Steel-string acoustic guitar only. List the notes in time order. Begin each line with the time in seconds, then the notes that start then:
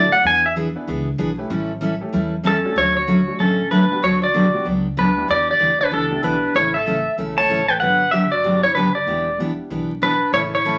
0.23 E3 B3 D4 G#4
0.56 E3 B3 D4 G#4
0.88 E3 B3 D4 G#4
1.18 E3 B3 D4 G#4
1.50 E3 G3 C#4 E4 A4
1.81 E3 G3 C#4 E4 A4
2.13 E3 G3 C#4 E4 A4
2.44 E3 G3 C#4 E4 A4
2.76 D3 F#3 A3 C#4 F#4
3.07 D3 F#3 A3 C#4 F#4
3.39 D3 F#3 A3 C#4 F#4
3.71 D3 F#3 A3 C#4 F#4
4.02 D3 F#3 B3 D4 G4
4.34 D3 F#3 B3 D4 G4
4.64 D3 F#3 B3 D4 G4
4.97 D3 F#3 B3 D4 G4
5.28 E3 B3 D4 G4
5.59 E3 B3 D4 G4
5.91 E3 B3 D4 G4
6.23 E3 B3 D4 G4
6.54 C#3 E3 A3 C#4 A4
6.86 C#3 E3 A3 C#4 A4
7.18 C#3 E3 A3 C#4 A4
7.49 C#3 E3 A3 C#4 A4
7.81 D3 F#3 B3 D4 G4
8.12 D3 F#3 B3 D4 G4
8.44 D3 F#3 B3 D4 G4
8.76 D3 F#3 B3 D4 G4
9.07 E3 B3 D4 G4
9.40 E3 B3 D4 G4
9.70 E3 B3 D4 G4
10.02 E3 B3 D4 G4
10.33 C#3 E3 A3 C#4 A4
10.65 C#3 E3 A3 C#4 A4